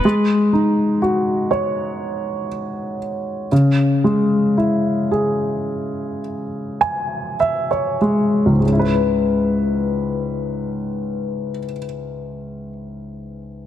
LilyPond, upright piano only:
\new Staff \with { instrumentName = "Upright piano" } { \time 4/4 \key cis \minor \tempo 4 = 53 << { r1 | r2 r8 gis''8 e''16 cis''8. | r1 | } \\ { gis8 dis'8 fis'8 cis''2 cis8 | gis8 e'8 gis'2 r8 gis8 | <cis, gis, gis cis' e' b'>1 | } >> }